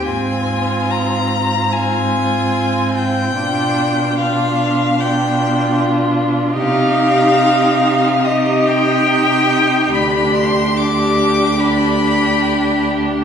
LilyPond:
<<
  \new Staff \with { instrumentName = "Violin" } { \time 4/4 \key g \phrygian \tempo 4 = 72 aes''4 bes''4 aes''4. g''8~ | g''4 f''4 g''4 r4 | f''2 ees''8 g''4. | b''8 c'''8 d'''4 b''4. r8 | }
  \new Staff \with { instrumentName = "Violin" } { \time 4/4 \key g \phrygian f'2 f'2 | f'4 f'4 f'2 | g'2 g'2 | g'4 g'4 g'2 | }
  \new Staff \with { instrumentName = "Viola" } { \time 4/4 \key g \phrygian c'2 c'2 | d'4 d'4 d'2 | ees'2 ees'2 | d'4 d'4 d'2 | }
  \new Staff \with { instrumentName = "Cello" } { \clef bass \time 4/4 \key g \phrygian aes,1 | b,1 | c1 | d,1 | }
>>